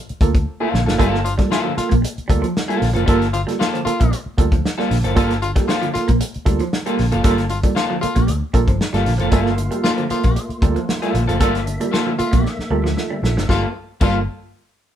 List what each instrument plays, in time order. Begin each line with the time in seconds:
0.09 muted fingered electric bass stroke, closed hi-hat
0.21 fingered electric bass D2, reed electric piano A#3 F4 A4, kick, closed hi-hat
0.35 kick, closed hi-hat
0.60 reed electric piano A#3 F4 A4, clean electric guitar A#3 F4 A4
0.73 fingered electric bass A#1, reed electric piano G2 D3, snare
0.86 fingered electric bass F#1, reed electric piano A#3 F4 A4, clean electric guitar A#3 F4 A4, snare
0.98 fingered electric bass G1, clean electric guitar G3 A#3 F4 A4, reed electric piano A#3 F4 A4, kick, closed hi-hat
1.14 snare
1.25 reed electric piano G2 D3, tenor saxophone F4, muted clean electric guitar stroke, closed hi-hat
1.38 clean electric guitar G3, reed electric piano A#3 F4 A4, kick, snare, closed hi-hat
1.51 clean electric guitar A#3 F4 A4, reed electric piano F4 A4, tenor saxophone F4, snare
1.64 reed electric piano G2 D3, clean electric guitar F3
1.75 reed electric piano A#3 F4 A4, tenor saxophone F4, muted clean electric guitar stroke, muted fingered electric bass stroke, snare, closed hi-hat
1.89 fingered electric bass A#1, clean electric guitar A#3, kick, closed hi-hat
2.02 muted clean electric guitar stroke, closed hi-hat
2.18 muted fingered electric bass stroke, closed hi-hat
2.28 fingered electric bass D2, clean electric guitar G3, reed electric piano A#3 F4 A4, kick, closed hi-hat
2.42 clean electric guitar F3, closed hi-hat
2.57 snare
2.68 clean electric guitar G3 A#3 F4 A4, reed electric piano A#3 F4 A4, closed hi-hat
2.81 fingered electric bass A#1, reed electric piano G2 D3, muted clean electric guitar stroke, snare, open hi-hat
2.93 fingered electric bass F#1, clean electric guitar F3 A#3 F4 A4, reed electric piano A#3 F4 A4, closed hi-hat
3.06 fingered electric bass G1, clean electric guitar G3 A#3 F4 A4, reed electric piano A#3 F4 A4, kick, closed hi-hat
3.22 snare, closed hi-hat
3.33 reed electric piano G2 D3, tenor saxophone F4, muted clean electric guitar stroke, closed hi-hat
3.47 clean electric guitar G3, reed electric piano A#3 F4 A4, snare, closed hi-hat
3.59 clean electric guitar A#3 F4 A4, tenor saxophone F4, snare
3.74 reed electric piano G2 D3, clean electric guitar F3, closed hi-hat
3.85 reed electric piano A#3 F4 A4, tenor saxophone F4, muted fingered electric bass stroke, muted clean electric guitar stroke, closed hi-hat
4.00 fingered electric bass A#1, clean electric guitar A#3, kick, closed hi-hat
4.12 muted clean electric guitar stroke, closed hi-hat
4.26 muted fingered electric bass stroke
4.38 fingered electric bass D2, clean electric guitar G3, reed electric piano A#3 F4 A4, kick, closed hi-hat
4.52 clean electric guitar F3, kick, closed hi-hat
4.66 snare
4.78 clean electric guitar G3 A#3 F4 A4, reed electric piano A#3 F4 A4, snare
4.90 fingered electric bass A#1, reed electric piano G2 D3, muted clean electric guitar stroke, snare, open hi-hat
5.04 fingered electric bass F#1, clean electric guitar F3 A#3 F4 A4, reed electric piano A#3 F4 A4, closed hi-hat
5.16 fingered electric bass G1, clean electric guitar G3 A#3 F4 A4, reed electric piano A#3 F4 A4, kick, closed hi-hat
5.30 snare, closed hi-hat
5.42 reed electric piano G2 D3, tenor saxophone F4, muted clean electric guitar stroke, closed hi-hat
5.56 clean electric guitar G3, reed electric piano A#3 F4 A4, kick, snare, closed hi-hat
5.68 clean electric guitar A#3 F4 A4, tenor saxophone F4, reed electric piano F4 A4, snare
5.82 reed electric piano G2 D3, clean electric guitar F3, closed hi-hat
5.93 reed electric piano A#3 F4 A4, tenor saxophone F4, muted clean electric guitar stroke, muted fingered electric bass stroke, snare, closed hi-hat
6.08 fingered electric bass A#1, clean electric guitar A#3, kick, closed hi-hat
6.20 muted clean electric guitar stroke, closed hi-hat
6.34 muted fingered electric bass stroke, closed hi-hat
6.45 fingered electric bass D2, clean electric guitar G3, reed electric piano A#3 F4 A4, kick, closed hi-hat
6.59 clean electric guitar F3, closed hi-hat
6.73 snare
6.86 clean electric guitar G3 A#3 F4 A4, reed electric piano A#3 F4 A4, closed hi-hat
6.98 fingered electric bass A#1, reed electric piano G2 D3, muted clean electric guitar stroke, snare, open hi-hat
7.12 fingered electric bass F#1, clean electric guitar F3 A#3 F4 A4, reed electric piano A#3 F4 A4, closed hi-hat
7.24 fingered electric bass G1, clean electric guitar G3 A#3 F4 A4, reed electric piano A#3 F4 A4, kick, closed hi-hat
7.38 snare, closed hi-hat
7.49 reed electric piano G2 D3, tenor saxophone F4, muted clean electric guitar stroke, closed hi-hat
7.63 clean electric guitar G3, reed electric piano A#3 F4 A4, kick, closed hi-hat
7.75 clean electric guitar A#3 F4 A4, tenor saxophone F4, snare
7.90 reed electric piano G2 D3, clean electric guitar F3
8.01 reed electric piano A#3 F4 A4, tenor saxophone F4, muted clean electric guitar stroke, muted fingered electric bass stroke, closed hi-hat
8.15 fingered electric bass A#1, clean electric guitar A#3, kick, closed hi-hat
8.27 fingered electric bass D2, muted clean electric guitar stroke, closed hi-hat
8.54 fingered electric bass A#1, clean electric guitar G3, reed electric piano A#3 F4 A4, kick, closed hi-hat
8.68 fingered electric bass G1, clean electric guitar F3, kick, closed hi-hat
8.81 snare
8.93 fingered electric bass G1, clean electric guitar G3 A#3 F4 A4, reed electric piano A#3 F4 A4, snare, closed hi-hat
9.04 fingered electric bass A#1, reed electric piano G2 D3, muted clean electric guitar stroke, snare, open hi-hat
9.18 fingered electric bass F#1, clean electric guitar F3 A#3 F4 A4, reed electric piano A#3 F4 A4, closed hi-hat
9.31 fingered electric bass G1, clean electric guitar G3 A#3 F4 A4, tonewheel organ A3 A#3 F4, reed electric piano A#3 F4 A4, kick, closed hi-hat
9.46 snare
9.58 reed electric piano G2 D3, muted clean electric guitar stroke, closed hi-hat
9.71 clean electric guitar G3, reed electric piano A#3 F4 A4, closed hi-hat
9.84 clean electric guitar A#3 F4 A4, tenor saxophone F4, reed electric piano F4 A4, snare
9.97 reed electric piano G2 D3, clean electric guitar F3, closed hi-hat
10.09 reed electric piano A#3 F4 A4, tenor saxophone F4, muted clean electric guitar stroke, muted fingered electric bass stroke, snare, closed hi-hat
10.23 fingered electric bass A#1, clean electric guitar A#3, kick, closed hi-hat
10.36 muted clean electric guitar stroke, closed hi-hat
10.49 muted fingered electric bass stroke, closed hi-hat
10.62 fingered electric bass D2, clean electric guitar G3, reed electric piano A#3 F4 A4, kick, closed hi-hat
10.76 clean electric guitar F3, closed hi-hat
10.89 snare
11.02 clean electric guitar G3 A#3 F4 A4, reed electric piano A#3 F4 A4, closed hi-hat
11.14 fingered electric bass A#1, reed electric piano G2 D3, muted clean electric guitar stroke, snare, closed hi-hat
11.28 fingered electric bass F#1, clean electric guitar F3 A#3 F4 A4, reed electric piano A#3 F4 A4, closed hi-hat
11.40 fingered electric bass G1, clean electric guitar G3 A#3 F4 A4, reed electric piano A#3 F4 A4, tonewheel organ E5, kick, closed hi-hat
11.55 snare, closed hi-hat
11.66 reed electric piano G2 D3, muted clean electric guitar stroke, closed hi-hat
11.80 clean electric guitar G3, reed electric piano A#3 F4 A4, closed hi-hat
11.91 clean electric guitar A#3 F4 A4, tenor saxophone F4, reed electric piano F4 A4, snare
12.06 reed electric piano G2 D3, clean electric guitar F3
12.18 reed electric piano A#3 F4 A4, tenor saxophone F4, muted clean electric guitar stroke, muted fingered electric bass stroke, closed hi-hat
12.31 fingered electric bass A#1, clean electric guitar A#3, kick, closed hi-hat
12.44 muted clean electric guitar stroke, snare
12.59 muted fingered electric bass stroke, snare
12.70 fingered electric bass D2, clean electric guitar G3, reed electric piano A#3 F4 A4
12.84 clean electric guitar F3, snare
12.97 reed electric piano F4 A4, snare
13.10 reed electric piano G2 D3, clean electric guitar G3
13.23 fingered electric bass A#1, reed electric piano F4 A4, muted clean electric guitar stroke, snare
13.36 fingered electric bass F#1, clean electric guitar F3, snare
13.48 fingered electric bass G1, clean electric guitar G3 A#3 F4 A4, tonewheel organ A3 A#3 F4, reed electric piano A#3 F4 A4, tenor saxophone F4, kick, snare
14.01 fingered electric bass G1, clean electric guitar G3 A#3 F4 A4, reed electric piano A#3 F4 A4, tenor saxophone F4, kick, crash